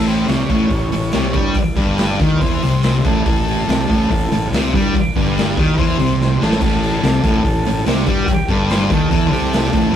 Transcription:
Already playing: fingered electric bass A1, distorted electric guitar A2
0.07 transistor combo organ G4 C5, open hi-hat
0.28 fingered electric bass C2, distorted electric guitar C3, transistor combo organ C#5, snare, open hi-hat
0.49 fingered electric bass A1, distorted electric guitar A2, kick, open hi-hat
0.70 fingered electric bass A1, distorted electric guitar A2, kick, open hi-hat
0.92 fingered electric bass A1, distorted electric guitar A2, open hi-hat
1.12 fingered electric bass C2, distorted electric guitar C3, snare, open hi-hat
1.34 fingered electric bass G2, distorted electric guitar G3, kick, open hi-hat
1.54 kick, open hi-hat
1.76 fingered electric bass G1, distorted electric guitar G2, kick, open hi-hat
1.98 snare, open hi-hat
2.20 fingered electric bass D#2, distorted electric guitar D#3, kick, open hi-hat
2.37 transistor combo organ B4 C5
2.41 fingered electric bass E2, distorted electric guitar E3, kick, open hi-hat
2.63 fingered electric bass C2, distorted electric guitar C3, open hi-hat
2.83 transistor combo organ C5, snare, open hi-hat
2.95 snare
3.05 fingered electric bass A1, distorted electric guitar A2, transistor combo organ A4, kick, open hi-hat
3.26 fingered electric bass A1, distorted electric guitar A2, transistor combo organ A4, kick, open hi-hat
3.48 open hi-hat
3.67 fingered electric bass C2, distorted electric guitar C3, snare, open hi-hat
3.89 fingered electric bass A1, distorted electric guitar A2, kick, open hi-hat
4.11 fingered electric bass A1, distorted electric guitar A2, kick, open hi-hat
4.30 fingered electric bass A1, distorted electric guitar A2, open hi-hat
4.50 fingered electric bass C2, distorted electric guitar C3, open hi-hat
4.54 snare
4.73 fingered electric bass G2, distorted electric guitar G3, kick, open hi-hat
4.95 kick, open hi-hat
5.16 fingered electric bass G1, distorted electric guitar G2, kick, open hi-hat
5.38 snare, open hi-hat
5.57 fingered electric bass D#2, distorted electric guitar D#3, kick, open hi-hat
5.74 distorted electric guitar E3, transistor combo organ B4
5.78 fingered electric bass E2, transistor combo organ C5, kick, open hi-hat
5.98 fingered electric bass C2, distorted electric guitar C3, open hi-hat
6.21 transistor combo organ C5, snare
6.41 fingered electric bass A1, distorted electric guitar A2, transistor combo organ A4, snare
6.52 snare
6.61 fingered electric bass A1, distorted electric guitar A2, transistor combo organ A4, kick, crash
6.83 snare, open hi-hat
7.03 fingered electric bass C2, distorted electric guitar C3, snare, open hi-hat
7.24 fingered electric bass A1, distorted electric guitar A2, kick, open hi-hat
7.44 fingered electric bass A1, distorted electric guitar A2, kick, open hi-hat
7.65 fingered electric bass A1, distorted electric guitar A2, open hi-hat
7.86 fingered electric bass C2, distorted electric guitar C3, snare, open hi-hat
7.98 snare
8.07 fingered electric bass G2, distorted electric guitar G3, kick, open hi-hat
8.25 transistor combo organ F#4, kick, open hi-hat
8.30 transistor combo organ G4
8.48 fingered electric bass G1, distorted electric guitar G2, transistor combo organ A4, kick, open hi-hat
8.70 transistor combo organ C5, snare, open hi-hat
8.90 fingered electric bass D#2, distorted electric guitar D#3, transistor combo organ A4, kick, open hi-hat
9.11 fingered electric bass E2, distorted electric guitar E3, kick, open hi-hat
9.32 fingered electric bass C2, distorted electric guitar C3, open hi-hat
9.53 snare, open hi-hat
9.65 snare
9.73 fingered electric bass A1, distorted electric guitar A2, kick, open hi-hat

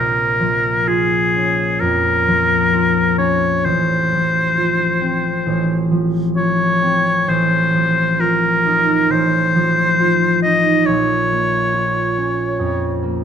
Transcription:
Already playing: harp A#1, oboe A#4
0.40 harp F3
0.87 harp F4, oboe G#4
1.36 harp C#4
1.80 harp F2, oboe A#4
2.27 harp F3
2.73 harp F4
3.18 harp C#4, oboe C#5
3.65 harp A1, oboe C5
4.13 harp F3
4.58 harp F4
5.01 harp C4
5.46 harp A1
5.91 harp F3
6.36 harp F4, oboe C#5
6.82 harp C4
7.28 harp A1, oboe C5
7.74 harp F3
8.19 harp F4, oboe A#4
8.66 harp D#4
9.10 harp A1, oboe C5
9.55 harp F3
10.00 harp F4
10.42 harp D#4, oboe D#5
10.86 harp A#1, oboe C#5
11.32 harp A#3
11.74 harp F4
12.17 harp C#4
12.59 harp F2
13.03 harp A#3

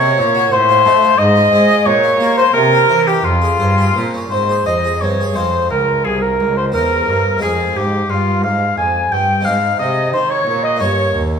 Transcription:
Already playing: harpsichord C3, cello C3, oboe C#5, flute C#5
0.01 harpsichord C4
0.18 harpsichord A#2 A#3, cello A#2
0.35 harpsichord F#4
0.51 harpsichord A2, cello A2, flute C5, oboe C5
0.69 harpsichord F4
0.85 harpsichord A3 D#4, cello A3
1.02 harpsichord F4
1.18 harpsichord G#2, cello G#2, flute D#5, oboe D#5
1.36 harpsichord F4
1.52 cello G#3, harpsichord G#3 C4
1.69 harpsichord F4
1.85 harpsichord A#2, cello A#2, flute C#5, oboe C#5
2.04 harpsichord F4
2.20 cello A#3, harpsichord A#3 G4
2.36 harpsichord F4, flute C5, oboe C5
2.53 cello C3, harpsichord C3, flute A#4, oboe A#4
2.73 harpsichord G4
2.89 harpsichord E3 C5, cello E3
3.07 oboe G4, flute G4, harpsichord G4
3.24 cello F2, harpsichord F2, flute F4, oboe F4
3.42 harpsichord G#4
3.60 harpsichord G2 C5, cello G2
3.78 harpsichord G#4
3.96 harpsichord A#2 C4, cello A#2
4.14 harpsichord C#4
4.30 cello G#2, harpsichord G#2 C4, oboe C5, flute C5
4.49 harpsichord G#4
4.66 cello F2, harpsichord F2 C5, oboe D#5, flute D#5
4.84 harpsichord G#4
5.01 cello G2, harpsichord G2 C4, oboe C#5, flute C#5
5.21 harpsichord G#4
5.32 harpsichord G#3 C4 F4, oboe C5, flute C5
5.37 cello F2, harpsichord F2
5.70 harpsichord C#2, cello C#2, oboe A#4, flute A#4
6.04 cello C2, harpsichord C2, oboe G#4, flute G#4
6.21 flute A#4, oboe A#4
6.39 cello C#2, harpsichord C#2
6.56 flute C5, oboe C5
6.72 cello E2, harpsichord E2 C4 G4, flute A#4, oboe A#4
7.07 cello G2, harpsichord G2
7.38 cello F2, harpsichord G#3 C4 F4
7.42 harpsichord F2, flute G#4, oboe G#4
7.75 cello G#2, harpsichord G#2, flute G4, oboe G4
8.08 cello G2, harpsichord G2, flute F4, oboe F4
8.43 cello G#2, harpsichord G#2, flute F5, oboe F5
8.77 cello F2, harpsichord F2, flute G#5, oboe G#5
9.11 cello G2, harpsichord G2, flute G5, oboe G5
9.41 harpsichord G#3 C4 D#4, oboe F5
9.45 harpsichord G#2, cello G#2, flute F5
9.79 cello C3, harpsichord C3, flute D#5, oboe D#5
10.12 cello D#3, harpsichord D#3, flute C5, oboe C5
10.29 flute C#5, oboe C#5
10.47 cello A#2, harpsichord A#2
10.63 flute D#5, oboe D#5
10.77 cello G2, harpsichord G2 A#3 D#4, flute C#5, oboe C#5
11.13 cello D#2, harpsichord D#2

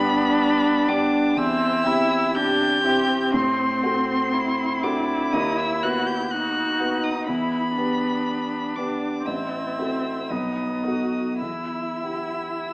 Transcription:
Already playing: grand piano G2 B3 D4 G4, cello B3, viola D4, violin B5
0.87 grand piano B3 D4 G4, cello D4, violin D6
1.36 grand piano E2, viola C4, cello E4, violin E6
1.84 grand piano C4 E4 G4, viola E4
2.35 viola D4, cello G4, violin G6
2.84 grand piano C4 E4 G4, viola C4
3.34 grand piano A2, cello C4, violin C6
3.83 grand piano C4 F#4 A4
4.33 viola E4
4.83 grand piano C4 F#4 A4, cello D4, violin D6
5.33 grand piano D#2, cello D#4, violin D#6
5.58 cello E4, violin E6
5.83 grand piano B3 F#4 B4, cello F#4, violin F#6
6.07 cello G4, violin G6
6.31 viola D#4, cello F#4, violin F#6
6.79 grand piano B3 F#4 B4
7.03 cello D#4, violin D#6
7.27 grand piano E2, cello B3, viola E4, violin B5
7.77 grand piano B3 G4 B4, viola D4
8.76 grand piano B3 G4 B4, cello D4, violin D6
9.26 grand piano A1, viola C4, cello E4, violin E6
9.78 grand piano C4 F#4 A4
10.30 grand piano B1, viola B3, cello D#4, violin D#6
10.84 grand piano B3 F#4 A4, viola F#4
11.41 grand piano E2, cello E4, viola E4, violin E6
12.02 grand piano B3 E4 G4

